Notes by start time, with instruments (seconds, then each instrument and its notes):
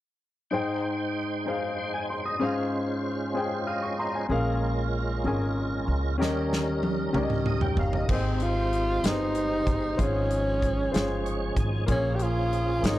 0.50 grand piano G#2 D#4 G#4 C5 G5, tonewheel organ G#3 D#4 C5 G5
1.46 grand piano D#4 G#4 C5 F5
1.78 tonewheel organ C6
1.93 tonewheel organ G#5, grand piano G#5
2.09 tonewheel organ G5, grand piano C6
2.25 tonewheel organ D#5, grand piano D#6
2.39 grand piano G#2 C#4 G#4 C5 F5, tonewheel organ G#3 C#4 F4 C5
3.34 grand piano C#4 G#4 C5 G5
3.67 tonewheel organ D#5, grand piano F5 F6
3.82 grand piano C#6
3.99 grand piano A#5 C6
4.15 grand piano G#5
4.29 upright bass A#1, grand piano A#2 C#4 G#4 A#4 F5, tonewheel organ G#3 C#4 F4 A#4
5.24 upright bass G#1, grand piano C#4 G#4 A#4 G#5
5.88 upright bass C#2
6.18 upright bass D#2, grand piano D#3 C#4 G4 A#4 D#5, tonewheel organ C#4, snare
6.22 tonewheel organ G3 D#4 G#4
6.29 tonewheel organ A#4
6.53 snare
6.83 high tom
7.12 upright bass C#2, grand piano C#4 G4 A#4 D5, mid tom
7.23 grand piano D#5
7.30 mid tom
7.46 tonewheel organ D#5, mid tom
7.61 grand piano G5, tonewheel organ G5, floor tom
7.77 upright bass G1, grand piano F5, tonewheel organ F5, floor tom
7.93 grand piano D#5, tonewheel organ D#5, floor tom
8.09 upright bass G#1, grand piano G#2 A#3 G4 G#4 D#5, tonewheel organ G#3 C4 D#4 C5, tenor saxophone C4, kick, crash
8.15 grand piano C4
8.40 tenor saxophone F4, closed hi-hat
8.73 closed hi-hat
9.03 upright bass G1, grand piano C4 G4 G#4 B4, snare, closed hi-hat
9.07 tenor saxophone D#4
9.12 grand piano C5
9.35 closed hi-hat
9.67 upright bass G1, kick, closed hi-hat
9.97 upright bass G#1, grand piano G#2 F4 G#4 C5 C#5, tonewheel organ D#3 G#3 C#4 G#4, kick, closed hi-hat
10.03 tonewheel organ F3, tenor saxophone C#4
10.31 closed hi-hat
10.62 kick, closed hi-hat
10.92 upright bass G1, grand piano F4 G#4 C5 C#5, closed hi-hat
10.96 snare
11.25 tonewheel organ C#5, closed hi-hat
11.56 upright bass G#1, tonewheel organ G#5, kick, closed hi-hat
11.86 upright bass A#1, grand piano A#2 A#3 F4 G#4 C#5, tonewheel organ F3 A#3 C#4 G#4, kick, closed hi-hat
11.91 tenor saxophone C#4
12.16 tenor saxophone G4, closed hi-hat
12.23 tenor saxophone F4
12.53 closed hi-hat
12.81 upright bass G#1, grand piano A#3 F4 G#4 C#5, closed hi-hat
12.86 tenor saxophone D#4, snare